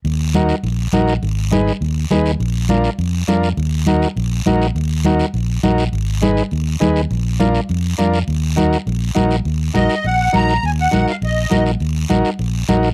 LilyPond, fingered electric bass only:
\new Staff \with { instrumentName = "Fingered electric bass" } { \clef bass \time 4/4 \key ees \minor \tempo 4 = 204 ees,2 bes,,4 bes,,4 | aes,,2 ees,4 ees,4 | bes,,2 f,4 f,4 | ees,2 bes,,4 bes,,4 |
ees,2 bes,,4 bes,,4 | aes,,2 ees,4 ees,4 | bes,,2 f,4 f,4 | ees,2 bes,,4 bes,,4 |
ees,4 bes,,8 r8 bes,,4 bes,,4 | ees,4 bes,,8 r8 bes,,4 bes,,4 | ees,4 bes,,8 r8 bes,,4 bes,,4 | }